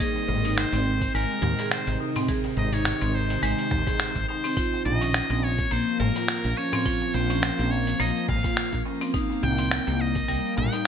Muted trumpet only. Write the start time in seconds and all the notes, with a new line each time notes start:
0.00 D#5
0.57 C5
1.15 A#4
1.72 C5
2.57 D#5
2.74 C#5
3.15 C5
3.44 C5
4.29 C5
4.85 D#5
5.44 C#5
5.72 C5
6.00 A#4
6.57 C#5
7.14 C5
7.71 C#5
8.01 D#5
8.29 F5
9.44 G5
10.01 D#5
10.58 G5